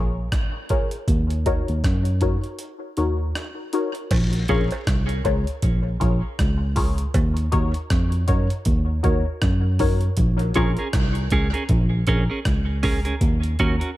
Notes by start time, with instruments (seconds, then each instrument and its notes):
Already playing: tine electric piano A#1, synth stab F4 G#4 A#4 C#5
0.32 kick, cross-stick, closed hi-hat
0.69 synth stab F4 G#4 A#4 C#5, kick, closed hi-hat
0.91 closed hi-hat
1.08 tine electric piano D#2, kick, closed hi-hat
1.30 closed hi-hat
1.46 synth stab D#4 F#4 A#4 C#5, kick, closed hi-hat
1.68 tine electric piano D#2, closed hi-hat
1.84 tine electric piano F#2, kick, cross-stick, closed hi-hat
2.05 closed hi-hat
2.21 synth stab D#4 F#4 A#4 C#5, kick, closed hi-hat
2.44 closed hi-hat
2.59 closed hi-hat
2.97 tine electric piano D#2, synth stab D#4 F#4 A#4 C#5, closed hi-hat
3.35 cross-stick, closed hi-hat
3.73 synth stab D#4 F#4 A#4 C#5, closed hi-hat
3.95 closed hi-hat
4.11 tine electric piano A#1, kick, closed hi-hat, crash, cowbell, vibraslap
4.33 closed hi-hat
4.48 tine electric piano A#1, clean electric guitar C#4 G#4 A#4, synth stab F4 G#4 A#4 C#5, kick, closed hi-hat
4.71 closed hi-hat, cowbell
4.87 tine electric piano C2, kick, cross-stick, closed hi-hat
5.09 closed hi-hat
5.24 tine electric piano C#2, synth stab F4 G#4 A#4 C#5, kick, closed hi-hat, cowbell
5.47 closed hi-hat
5.62 tine electric piano A#1, kick, closed hi-hat
6.00 tine electric piano A#1, synth stab F4 G#4 A#4 C#5, kick, closed hi-hat
6.39 tine electric piano C#2, kick, cross-stick, closed hi-hat
6.76 synth stab F4 G#4 A#4 C#5, kick, open hi-hat
6.98 closed hi-hat
7.14 tine electric piano D#2, kick, closed hi-hat, cowbell
7.37 closed hi-hat
7.52 tine electric piano D#2, synth stab D#4 F#4 A#4 C#5, kick, closed hi-hat
7.74 closed hi-hat
7.90 tine electric piano F2, kick, cross-stick, closed hi-hat
8.12 closed hi-hat
8.27 tine electric piano F#2, synth stab D#4 F#4 A#4 C#5, kick, closed hi-hat
8.50 closed hi-hat
8.65 tine electric piano D#2, kick, closed hi-hat
9.03 tine electric piano D#2, synth stab D#4 F#4 A#4 C#5, kick, closed hi-hat
9.42 tine electric piano F#2, kick, cross-stick, closed hi-hat
9.79 synth stab D#4 F#4 A#4 C#5, kick, open hi-hat
10.01 closed hi-hat
10.17 tine electric piano A#1, kick, closed hi-hat
10.39 closed hi-hat
10.54 tine electric piano A#1, clean electric guitar C#4 G#4 A#4, synth stab F4 G#4 A#4 C#5, kick, closed hi-hat
10.77 clean electric guitar C#4 G#4 A#4, closed hi-hat
10.93 tine electric piano C2, kick, cross-stick, closed hi-hat
11.15 closed hi-hat
11.30 tine electric piano C#2, clean electric guitar C#4 G#4 A#4, kick, closed hi-hat
11.53 clean electric guitar C#4 G#4 A#4, closed hi-hat
11.69 tine electric piano A#1, kick, closed hi-hat
12.07 tine electric piano A#1, clean electric guitar C#4 G#4 A#4, kick, closed hi-hat
12.30 clean electric guitar C#4 G#4 A#4
12.45 tine electric piano C#2, kick, cross-stick, closed hi-hat
12.83 clean electric guitar C#4 G#4 A#4, kick, open hi-hat
13.05 clean electric guitar C#4 G#4 A#4, closed hi-hat
13.21 tine electric piano D#2, kick, closed hi-hat
13.43 closed hi-hat
13.59 tine electric piano D#2, clean electric guitar C#4 F#4 A#4, kick, closed hi-hat
13.80 clean electric guitar C#4 F#4 A#4, closed hi-hat